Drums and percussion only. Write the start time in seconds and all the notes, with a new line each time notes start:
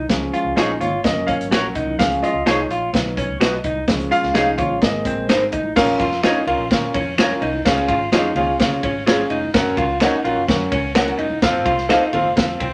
0.09 kick, snare, closed hi-hat, muted conga
0.34 closed hi-hat, muted conga
0.57 finger snap, snare, closed hi-hat, high conga
0.81 closed hi-hat, low conga
1.03 kick, snare, closed hi-hat, low conga
1.28 kick, closed hi-hat, muted conga
1.41 closed hi-hat
1.51 finger snap, snare, closed hi-hat, high conga
1.75 kick, closed hi-hat
1.86 high conga
1.99 kick, snare, closed hi-hat, muted conga
2.11 closed hi-hat
2.23 closed hi-hat, muted conga
2.46 finger snap, snare, closed hi-hat, high conga
2.70 closed hi-hat
2.93 kick, snare, closed hi-hat, muted conga, low conga
3.17 kick, closed hi-hat, muted conga
3.40 finger snap, snare, closed hi-hat, high conga
3.64 kick, closed hi-hat
3.75 high conga
3.88 kick, snare, closed hi-hat, muted conga
3.99 closed hi-hat
4.11 closed hi-hat, muted conga
4.23 snare
4.35 finger snap, snare, closed hi-hat, high conga
4.58 kick, closed hi-hat, low conga
4.82 kick, snare, closed hi-hat, muted conga, low conga
5.05 kick, closed hi-hat, muted conga
5.28 finger snap, snare, closed hi-hat, high conga
5.52 kick, closed hi-hat
5.63 high conga
5.76 kick, snare, crash, muted conga
5.99 kick, ride, muted conga
6.12 snare
6.23 finger snap, snare, ride, high conga
6.47 ride
6.71 kick, snare, ride, muted conga, low conga
6.94 kick, ride, muted conga
7.18 finger snap, snare, ride, high conga
7.30 high conga
7.42 ride
7.53 high conga
7.66 kick, snare, ride, muted conga
7.77 ride
7.89 kick, ride, muted conga
8.12 finger snap, snare, ride, high conga
8.35 ride, low conga
8.59 kick, snare, ride, low conga
8.83 kick, ride, muted conga
9.07 finger snap, snare, ride, high conga
9.19 high conga
9.30 ride
9.42 high conga
9.54 kick, snare, ride, muted conga
9.77 kick, ride, muted conga
10.00 finger snap, snare, ride, high conga
10.25 ride
10.47 kick, snare, ride, low conga
10.72 kick, ride, muted conga
10.95 finger snap, snare, ride, high conga
11.07 ride, high conga
11.19 ride
11.30 high conga
11.42 kick, snare, ride, muted conga
11.66 kick, ride, muted conga
11.78 snare
11.89 finger snap, snare, ride, high conga
12.13 ride, low conga
12.36 kick, snare, ride, low conga
12.60 kick, ride, muted conga